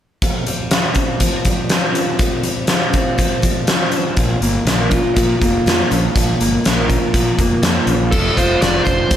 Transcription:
0.22 F2, kick, closed hi-hat
0.47 G3, closed hi-hat
0.71 F4, snare, closed hi-hat
0.95 C4, kick, closed hi-hat
1.20 F3, kick, closed hi-hat
1.45 G3, kick, closed hi-hat
1.69 C4, snare, closed hi-hat
1.95 F3, closed hi-hat
2.19 F2, kick, closed hi-hat
2.43 G3, closed hi-hat
2.67 F4, snare, closed hi-hat
2.93 C4, kick, closed hi-hat
3.18 F3, kick, closed hi-hat
3.42 G3, kick, closed hi-hat
3.67 C4, snare, closed hi-hat
3.91 F3, closed hi-hat
4.17 A#1 A#2, kick, closed hi-hat
4.41 G1 A#3, closed hi-hat
4.65 A#1 A#4, snare, closed hi-hat
4.91 F4, kick, closed hi-hat
5.16 A#2 F3, kick, closed hi-hat
5.41 F1 A#3, kick, closed hi-hat
5.66 F2 F4, snare, closed hi-hat
5.91 A#1 F3, closed hi-hat
6.16 A#1 A#2, kick, closed hi-hat
6.40 G1 A#3, closed hi-hat
6.64 A#1 A#4, snare, closed hi-hat
6.90 F4, kick, closed hi-hat
7.14 A#2 F3, kick, closed hi-hat
7.39 F1 A#3, kick, closed hi-hat
7.62 F2 F4, snare, closed hi-hat
7.86 A#1 F3, closed hi-hat
8.11 F1 F2 A4, kick, crash
8.37 F1 F4 C5, kick, closed hi-hat
8.62 F1 C4 D5, snare, closed hi-hat
8.84 F1 G3 C5, kick, closed hi-hat
9.11 F1 F3, kick, closed hi-hat

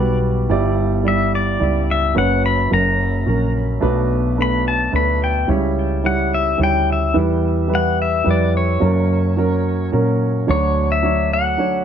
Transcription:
Already playing: G1 B1 G2 G3 F#4 B4 D5
0.49 G1 G2 G3 E4 D5
1.04 G3 E4 D5
1.08 E5
1.35 D5
1.60 C#2 G3 E4 D5
1.91 E5
2.15 F#1 F#2 F#3 C#4 B4 F#5
2.46 B5
2.71 F#1 F#2 F#3 C#4 A#4 A#5
3.26 A#1 F#3 C#4 A#4
3.80 B1 B2 A3 D4 B4
4.37 A3 D4 B4
4.42 B5
4.68 A5
4.92 D2 A3 D4 B4
4.96 B5
5.24 G5
5.48 C#2 C#3 G3 E4 C#5
6.03 G3 E4 C#5 F#5
6.34 E5
6.58 D2 G3 E4 C#5
6.63 G5
6.92 E5
7.14 E2 E3 G3 E4 B4
7.68 G3 E4 B4
7.75 F#5
8.02 E5
8.24 F2 G3 E4 B4
8.31 D5
8.57 C#5
8.80 F#1 F#2 F#3 C#4 A#4
9.37 F#3 C#4 A#4
9.92 A#2 F#3 C#4 A#4
10.47 D2 D3 F#3 D4 C#5
10.92 E5
11.03 F#3 D4 C#5
11.33 F#5
11.58 F#3 D4 C#5

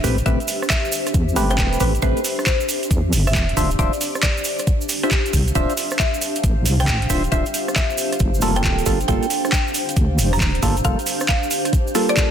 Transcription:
Already playing: D4 G4 C5 E5
0.04 A1 A3 C4 G4 B4, kick, open hi-hat, shaker
0.18 closed hi-hat, shaker
0.26 A1 A3 C4 G4 B4 E5, kick, closed hi-hat, shaker
0.40 closed hi-hat, shaker
0.48 open hi-hat, shaker
0.62 cross-stick, shaker
0.70 E5, kick, clap, shaker
0.85 shaker
0.92 open hi-hat, shaker
1.06 cross-stick, closed hi-hat, shaker
1.14 E2, kick, closed hi-hat, shaker
1.29 shaker
1.36 G1 A3 C4 G4 B4, open hi-hat, shaker
1.50 G5, cross-stick, closed hi-hat, shaker
1.58 E1, kick, clap, shaker
1.73 closed hi-hat, shaker
1.80 A1 A3 C4 G4 B4, kick, open hi-hat, shaker
1.95 closed hi-hat, shaker
2.02 A1 A3 C4 G4 B4 C5, kick, closed hi-hat, shaker
2.17 closed hi-hat, shaker
2.24 open hi-hat, shaker
2.39 cross-stick, shaker
2.46 C5, kick, clap, shaker
2.60 shaker
2.69 open hi-hat, shaker
2.83 closed hi-hat, shaker
2.91 E2, kick, closed hi-hat, shaker
3.13 G1, open hi-hat, shaker
3.27 E5, cross-stick, open hi-hat, shaker
3.35 E1, kick, clap, shaker
3.49 closed hi-hat
3.57 D1 D4 F4 C5 E5, kick, open hi-hat, shaker
3.71 C5, closed hi-hat, shaker
3.79 D1 D4 F4 C5 D5 E5, kick, closed hi-hat, shaker
3.87 G4
3.93 closed hi-hat, shaker
4.01 open hi-hat, shaker
4.15 cross-stick, shaker
4.22 D5, kick, clap, shaker
4.37 shaker
4.44 open hi-hat, shaker
4.59 F5, cross-stick, closed hi-hat, shaker
4.67 kick, closed hi-hat, shaker
4.81 shaker
4.89 open hi-hat, shaker
5.03 D4 F4 G4 C5 E5, cross-stick, closed hi-hat, shaker
5.11 kick, clap, shaker
5.26 closed hi-hat, shaker
5.33 C2, kick, open hi-hat, shaker
5.48 closed hi-hat, shaker
5.55 D1 D4 F4 C5 E5, kick, closed hi-hat, shaker
5.70 closed hi-hat, shaker
5.77 open hi-hat, shaker
5.90 cross-stick, shaker
5.99 E5, kick, clap, shaker
6.14 shaker
6.21 open hi-hat, shaker
6.36 closed hi-hat, shaker
6.44 A1, kick, closed hi-hat, shaker
6.66 C2, open hi-hat, shaker
6.80 G5, cross-stick, open hi-hat, shaker
6.87 A1, kick, clap, shaker
7.02 closed hi-hat
7.10 D1 D4 F4 C5 E5, kick, open hi-hat, shaker
7.24 closed hi-hat, shaker
7.32 D1 D4 F4 C5 E5, kick, closed hi-hat, shaker
7.46 closed hi-hat, shaker
7.54 open hi-hat, shaker
7.68 cross-stick, shaker
7.76 E5, kick, clap, shaker
7.90 shaker
7.98 open hi-hat, shaker
8.12 cross-stick, closed hi-hat, shaker
8.19 G1, kick, closed hi-hat, shaker
8.34 shaker
8.41 F1 G3 A#3 F4 A4, open hi-hat, shaker
8.56 G5, cross-stick, closed hi-hat, shaker
8.64 D1, kick, clap, shaker
8.79 closed hi-hat, shaker
8.86 G1 G3 A#3 F4 A4, kick, open hi-hat, shaker
9.00 closed hi-hat, shaker
9.08 G1 G3 A#3 F4 A4 G5, kick, closed hi-hat, shaker
9.23 closed hi-hat, shaker
9.30 open hi-hat, shaker
9.45 cross-stick, shaker
9.52 G5, kick, clap, shaker
9.68 shaker
9.74 open hi-hat, shaker
9.89 closed hi-hat, shaker
9.96 D2, kick, closed hi-hat, shaker
10.18 F1, open hi-hat, shaker
10.33 A#5, cross-stick, open hi-hat, shaker
10.41 D1, kick, clap, shaker
10.55 closed hi-hat
10.63 G1 G3 A#3 F4 A4, kick, open hi-hat, shaker
10.77 closed hi-hat, shaker
10.84 G1 G3 A#3 F4 A4 F5, kick, closed hi-hat, shaker
10.99 closed hi-hat, shaker
11.06 open hi-hat, shaker
11.20 cross-stick, shaker
11.28 F5, kick, clap, shaker
11.43 shaker
11.51 open hi-hat, shaker
11.65 cross-stick, closed hi-hat, shaker
11.73 kick, closed hi-hat, shaker
11.87 shaker
11.95 G3 A#3 F4 A4, open hi-hat, shaker
12.09 D5, cross-stick, closed hi-hat, shaker
12.17 kick, clap, shaker

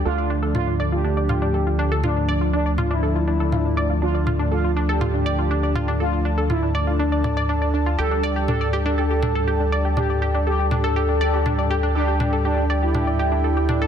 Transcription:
0.05 D2 D3 F3 A3 D4 F4 A4 D5 A5
0.18 F4
0.30 D4
0.43 A4
0.55 F4, mid tom
0.67 D4
0.80 D5
0.92 F4 G4
1.04 D3 A3 D4
1.17 D5
1.29 F4, mid tom
1.42 D4
1.54 A4
1.67 F4
1.79 D4
1.92 A4
2.04 D3 A3 D4 F4, mid tom
2.16 D4
2.29 D5
2.41 F4
2.53 D4
2.66 D5
2.78 F4, mid tom
2.91 D4 E4
3.03 A4
3.15 F4
3.28 D3 A3 D4
3.40 D3 A3 D4 A4
3.52 F4, mid tom
3.65 D4
3.77 D5
3.90 F4
4.02 D3 A3 D4 F4
4.15 D5
4.27 F4, mid tom
4.39 D4
4.52 F4 A4
4.64 F4
4.76 D4
4.89 G4 A4
5.01 D3 A3 D4 F4, mid tom
5.14 D4
5.26 D5
5.39 F4
5.51 D4
5.63 D5
5.76 F4, mid tom
5.88 D4
6.00 D3 A3 D4 F4 A4
6.13 F4
6.25 D4
6.38 A4
6.50 E4 F4, mid tom
6.62 D4
6.75 D5
6.87 D4 F4
6.99 D4
7.12 D5
7.24 D5, mid tom
7.37 D5
7.49 D4
7.62 D5
7.74 D4
7.86 F4
7.99 D2 G3 D4 G4 A4 D5
8.11 D4
8.23 D5
8.36 G4
8.48 D4 A4, mid tom
8.61 D5
8.73 G4
8.86 D4 A4
8.98 G3 D4 G4 A4
9.11 G4
9.23 D4, mid tom
9.35 A4
9.48 G4
9.60 D4
9.72 D5
9.85 G4
9.97 G3 D4 G4, mid tom
10.10 D5
10.22 G4
10.35 D4
10.47 G4 A4
10.59 G4
10.71 D4, mid tom
10.84 A4
10.96 G4
11.09 D4
11.21 G3 D4 G4 D5
11.34 G3 D4 G4
11.46 D4, mid tom
11.58 D5
11.71 G4
11.83 D4
11.95 G3 D4 G4 A4 G5
12.08 G4
12.20 D4, mid tom
12.33 A4
12.45 D4 G4
12.58 D4
12.70 D5
12.82 E4 G4
12.95 G3 D4 G4, mid tom
13.07 D5
13.19 G4
13.32 D4
13.44 A4
13.57 G4
13.69 D4, mid tom
13.82 A4

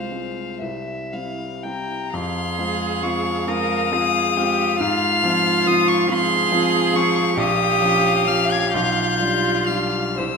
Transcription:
Already playing: C2 G#3 C4 F4 C5 F5
0.11 G#3 C4 F4
0.61 C2 E5
1.13 G3 C4 E4 F5
1.63 G3 C4 E4 G5 A#5
2.13 F2 G#4 F5 C6
2.58 G#3 C4 F4
3.02 G#3 C4 F4 C#6
3.46 G#3 C4 F4 A#4 D#6
3.91 G#3 C4 F4 G#4
4.36 G#3 C4 F4 G4
4.80 G#2 F4 F6
5.24 F3 C4 F4
5.66 F3 C4 F4 D#6
5.88 C#6
6.08 F3 C4 F4 G#4 C6
6.52 F3 C4 F4
6.94 F3 C4 F4 C#6
7.36 A#1 G4 F5 D#6
7.82 F3 C#4 F4
8.27 F3 C#4 F4 F6
8.51 G#6
8.73 B1 F4 G6
9.20 G3 D4 F4
9.66 G3 D4 F4 F6
10.18 C2 E4 C5 E6

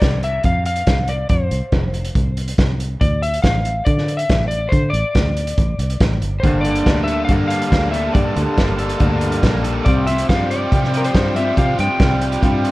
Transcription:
Already playing: D5
0.01 C2, kick, snare, closed hi-hat
0.23 E5, closed hi-hat
0.43 F2 F5, kick, closed hi-hat
0.65 F5, closed hi-hat
0.76 closed hi-hat
0.87 C2, kick, snare, closed hi-hat
1.07 D5, closed hi-hat
1.29 F2 C5, kick, closed hi-hat
1.51 C2, closed hi-hat
1.72 F1, kick, snare, closed hi-hat
1.94 closed hi-hat
2.05 closed hi-hat
2.15 C2, kick, closed hi-hat
2.37 closed hi-hat
2.48 closed hi-hat
2.58 C2, kick, snare, closed hi-hat
2.80 closed hi-hat
3.01 D2 D5, kick, closed hi-hat
3.22 E5, closed hi-hat
3.33 closed hi-hat
3.42 A1 F5, kick, snare, closed hi-hat
3.65 closed hi-hat
3.85 D3 D5, kick, closed hi-hat
3.98 snare
4.08 closed hi-hat
4.17 E5, closed hi-hat
4.29 A1, kick, snare, closed hi-hat
4.48 D5, closed hi-hat
4.69 D3 C5, kick, closed hi-hat
4.90 A1 D5
4.94 closed hi-hat
5.15 D2, kick, snare, closed hi-hat
5.37 closed hi-hat
5.47 closed hi-hat
5.58 A1, kick, closed hi-hat
5.79 C2, closed hi-hat
5.90 closed hi-hat
6.00 A1, kick, snare, closed hi-hat
6.21 G1, closed hi-hat
6.40 G2 G4 C5 A5, kick, closed hi-hat
6.44 G1 D3 G3 A#3 D4 A4
6.61 D5, closed hi-hat
6.65 D3 G3 A#3 D4 A4
6.75 closed hi-hat
6.86 D2 G3 A#3 D4 A4, kick, snare, closed hi-hat
7.04 A4 E5, closed hi-hat
7.25 A#3 F5, closed hi-hat
7.29 G2 D3 G3 A#3 D4 A4, kick
7.48 G3 F5, closed hi-hat
7.62 closed hi-hat
7.71 D2 G3 A#3 D4 A4, kick, snare, closed hi-hat
7.91 G3 A#3 D4 A4 E5, closed hi-hat
8.13 G2 D3 G3 A#3 D4 A4 D5, kick, closed hi-hat
8.35 D2 D3 G3 A#3 D4 A4, closed hi-hat
8.57 G1 G3 A#3 D4 A4, kick, snare, closed hi-hat
8.78 A4, closed hi-hat
8.89 closed hi-hat
8.99 D2 G2 D3 G3 A#3 D4 A4, kick, closed hi-hat
9.21 G3, closed hi-hat
9.32 closed hi-hat
9.42 A#1 G3 A#3 D4 A4, kick, snare, closed hi-hat
9.63 A4, closed hi-hat
9.85 C2 C3 F3 C4 F4 G4 C5 D5 G5, kick, closed hi-hat
10.07 F3 C4 F4 G4 E5, closed hi-hat
10.18 closed hi-hat
10.28 G2 F3 G3 C4 F4 G4 F5, kick, snare, closed hi-hat
10.50 G4 D5, closed hi-hat
10.71 C3 F3 G3 C4 F4 G4, kick, closed hi-hat
10.84 snare
10.93 F3, closed hi-hat
10.97 A#4
11.04 C5, closed hi-hat
11.14 G2 F3 G3 C4 F4 G4, kick, snare, closed hi-hat
11.36 C4 F4 G4 E5, closed hi-hat
11.56 C3 F3 C4 F4 G4 F5, kick, closed hi-hat
11.78 G2 F3 C4 F4 G4 G5, closed hi-hat
11.99 C2 F3 G3 C4 F4 G4, kick, snare, closed hi-hat
12.21 G4, closed hi-hat
12.32 closed hi-hat
12.42 G2 C3 F3 G3 C4 F4 G4, kick, closed hi-hat
12.64 F3, closed hi-hat

